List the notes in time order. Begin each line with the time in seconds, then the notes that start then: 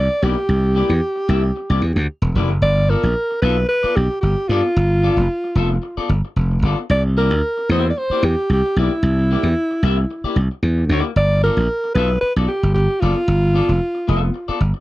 Already playing: D5
0.11 muted clean electric guitar stroke
0.22 B1 A#3 E4 G4 D5
0.37 muted clean electric guitar stroke
0.49 C2
0.75 A#3 E4 G4 D5
0.89 E2
1.16 muted clean electric guitar stroke
1.28 C2 A#3 E4 G4 E5
1.44 muted clean electric guitar stroke
1.56 muted clean electric guitar stroke
1.70 C2 A#3 E4 G4 D5
1.82 E2, muted clean electric guitar stroke
1.96 D2, muted clean electric guitar stroke
2.22 E1, muted clean electric guitar stroke
2.35 F1 A#3 E4 G4 D5
2.50 F#1, muted clean electric guitar stroke
2.62 G1 D5
2.89 B3 F4 A4 A#4 D5
3.03 A#1
3.31 muted clean electric guitar stroke
3.42 B1 B3 F4 A4 B4 E5
3.57 muted clean electric guitar stroke
3.69 B4, muted clean electric guitar stroke
3.83 B3 F4 A4 D5, muted slap bass stroke
3.96 B1 G4, muted clean electric guitar stroke
4.11 muted clean electric guitar stroke
4.21 G1 G4, muted clean electric guitar stroke
4.37 muted clean electric guitar stroke
4.48 G2 B3 F4 A4 D5
4.64 muted clean electric guitar stroke
4.76 G1
5.03 B3 F4 A4 D5
5.17 F1
5.44 muted clean electric guitar stroke
5.55 F1 B3 F4 A4 E5
5.71 muted clean electric guitar stroke
5.82 muted clean electric guitar stroke
5.97 B3 F4 A4 D5, muted slap bass stroke
6.09 G1, muted clean electric guitar stroke
6.25 muted clean electric guitar stroke
6.36 F1
6.51 muted clean electric guitar stroke
6.62 G1 B3 F4 A4 D5
6.79 muted clean electric guitar stroke
6.90 C2 D5
7.17 A#3 E4 G4 A#4 D5
7.31 D2
7.58 muted clean electric guitar stroke
7.69 E2 A#3 E4 G4 C5 E5
7.85 muted clean electric guitar stroke
7.90 D5
7.97 C5, muted clean electric guitar stroke
8.10 A#3 E4 G4 D5, muted slap bass stroke
8.23 E2 G4, muted clean electric guitar stroke
8.39 muted clean electric guitar stroke
8.49 C2 G4
8.66 muted clean electric guitar stroke
8.76 B1 A#3 E4 G4 D5
8.93 muted clean electric guitar stroke
9.03 C2
9.31 A#3 E4 G4 D5
9.43 E2
9.71 muted clean electric guitar stroke
9.83 C2 A#3 E4 G4 E5
9.98 muted clean electric guitar stroke
10.11 muted clean electric guitar stroke
10.24 A#3 E4 G4 D5, muted slap bass stroke
10.36 C2, muted clean electric guitar stroke
10.51 muted clean electric guitar stroke
10.63 E2
10.78 muted clean electric guitar stroke
10.89 D2 A#3 E4 G4 D5
11.05 muted clean electric guitar stroke
11.16 G1 D5
11.43 B3 F4 A4 A#4 D5
11.57 A#1
11.84 muted clean electric guitar stroke
11.94 B1 B3 F4 A4 B4 E5
12.10 muted clean electric guitar stroke
12.21 B4, muted slap bass stroke, muted clean electric guitar stroke
12.36 B1 B3 F4 A4 D5
12.48 G4, muted clean electric guitar stroke
12.63 G1, muted clean electric guitar stroke
12.74 G1 G4
12.90 muted clean electric guitar stroke
13.00 F#1 B3 F4 A4 D5
13.16 muted clean electric guitar stroke
13.28 G1
13.54 B3 F4 A4 D5
13.69 F1
13.95 muted clean electric guitar stroke
14.08 F1 B3 F4 A4 E5
14.22 muted clean electric guitar stroke
14.34 muted clean electric guitar stroke
14.48 B3 F4 A4 D5, muted slap bass stroke
14.60 G1, muted clean electric guitar stroke
14.74 muted clean electric guitar stroke